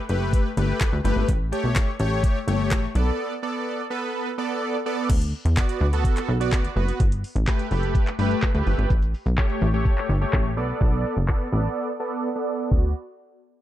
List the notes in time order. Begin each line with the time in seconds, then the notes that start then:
0.09 F#1 A3 G4 B4, closed hi-hat
0.33 kick, closed hi-hat
0.57 G1 A3 G4 B4, closed hi-hat
0.81 kick, snare, clap, closed hi-hat
0.93 D2
1.04 G1 A3 G4 B4, closed hi-hat
1.16 G#1
1.29 A1, kick, closed hi-hat
1.52 A3 G4 C#5, closed hi-hat
1.64 B1
1.76 kick, snare, clap, closed hi-hat
2.00 A1 A3 G4 C#5, closed hi-hat
2.23 kick, closed hi-hat
2.48 G1 A3 G4 C#5, closed hi-hat
2.71 A1, kick, snare, clap, closed hi-hat
2.95 B1 B3 A4 D5, closed hi-hat
3.43 B3 A4 D5
3.90 B3 A4 B4
4.38 B3 A4 D5
4.86 B3 A4 D5
5.10 D2, kick, closed hi-hat, crash
5.22 closed hi-hat
5.45 E2, closed hi-hat
5.57 B3 F#4 D5, kick, snare, clap, closed hi-hat
5.69 closed hi-hat
5.81 D2
5.93 B3 F#4 A4, closed hi-hat
6.05 kick, closed hi-hat
6.17 clap, closed hi-hat
6.29 B1
6.40 B3 F#4 D5, closed hi-hat
6.52 D2, kick, snare, clap, closed hi-hat
6.65 closed hi-hat
6.76 F#1 B3 F#4 B4
6.88 closed hi-hat
7.00 G1, kick, closed hi-hat
7.12 closed hi-hat
7.24 open hi-hat
7.36 A1, closed hi-hat
7.47 A3 G4 B4, kick, snare, clap, closed hi-hat
7.59 closed hi-hat
7.71 F#1 A3 G4 B4, open hi-hat
7.83 closed hi-hat
7.95 kick, closed hi-hat
8.07 clap, closed hi-hat
8.19 G1 A3 G4 B4, open hi-hat
8.31 closed hi-hat
8.42 kick, snare, clap, closed hi-hat
8.55 D2 A3 G4 B4, closed hi-hat
8.67 G1, open hi-hat
8.78 G#1, closed hi-hat
8.90 A1, kick, closed hi-hat, shaker
9.02 closed hi-hat, shaker
9.14 open hi-hat, shaker
9.26 B1, closed hi-hat, shaker
9.38 A3 G4 C#5, kick, snare, clap, closed hi-hat, shaker
9.50 closed hi-hat, shaker
9.61 A1, open hi-hat, shaker
9.74 A3 G4 C#5, closed hi-hat, shaker
9.85 kick, closed hi-hat, shaker
9.98 clap, closed hi-hat, shaker
10.09 G1, open hi-hat, shaker
10.21 A3 G4 C#5, closed hi-hat, shaker
10.33 A1, kick, snare, clap, closed hi-hat, shaker
10.45 closed hi-hat, shaker
10.57 B1 B3 A4 D5, open hi-hat, shaker
10.70 closed hi-hat, shaker
10.81 B1, kick, closed hi-hat, shaker
10.93 closed hi-hat, shaker
11.05 open hi-hat, shaker
11.17 F#1, closed hi-hat, shaker
11.28 B3 A4 D5, kick, snare, clap, closed hi-hat, shaker
11.41 closed hi-hat, shaker
11.52 A1 B3 A4 D5, open hi-hat, shaker
11.64 closed hi-hat, shaker
12.00 B3 A4 D5
12.36 B3 A4 D5
12.71 D2 B3 F#4 D5, kick, crash